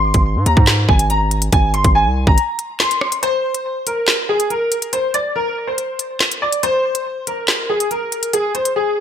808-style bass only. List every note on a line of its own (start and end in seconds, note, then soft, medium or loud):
0.00 0.13 G#1 loud
0.14 0.37 G#1 loud
0.36 0.46 G#2 loud
0.46 0.56 D#2 loud
0.57 0.87 G#2 loud
0.89 1.50 G#1 loud
1.53 1.75 G#1 loud
1.74 1.84 G1 medium
1.85 2.07 G#1 loud
2.06 2.26 C2 loud
2.27 2.38 G#1 loud